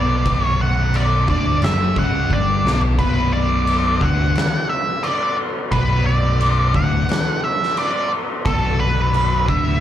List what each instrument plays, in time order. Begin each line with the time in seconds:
Already playing: picked electric bass B1, distorted electric guitar B2 B3, lead electric guitar D5
0.25 picked electric bass B0, distorted electric guitar B1 B2, kick, crash
0.42 lead electric guitar C#5
0.61 lead electric guitar F#5
0.94 lead electric guitar D5, crash
1.28 picked electric bass D1, distorted electric guitar D2 D3, lead electric guitar D5, kick
1.62 picked electric bass F#1, distorted electric guitar F#2 F#3, lead electric guitar E5, snare, crash
1.96 picked electric bass C#1, distorted electric guitar C#2 C#3, lead electric guitar F#5, kick
2.30 picked electric bass G1, distorted electric guitar G2 G3, lead electric guitar D5, kick
2.65 picked electric bass B1, distorted electric guitar B2 B3, snare
2.81 floor tom
2.99 picked electric bass B0, distorted electric guitar B1 B2, tonewheel organ B3 F#4 D5, lead electric guitar B4, kick, crash
3.33 lead electric guitar D5
3.67 crash
4.01 picked electric bass D1, distorted electric guitar D2 D3, lead electric guitar F#5, kick
4.35 snare, crash
4.70 lead electric guitar E5
5.03 lead electric guitar D5, crash
5.72 picked electric bass B0, distorted electric guitar B1 B2, lead electric guitar B4, kick, crash
6.06 lead electric guitar D5
6.41 crash
6.74 picked electric bass D1, distorted electric guitar D2 D3, lead electric guitar F#5, kick
7.09 snare, crash
7.44 lead electric guitar E5
7.63 snare
7.77 lead electric guitar D5, crash
8.45 picked electric bass B0, distorted electric guitar B1 B2, lead electric guitar A4, kick, crash
8.80 lead electric guitar B4
9.14 crash
9.48 picked electric bass D1, distorted electric guitar D2 D3, lead electric guitar E5, kick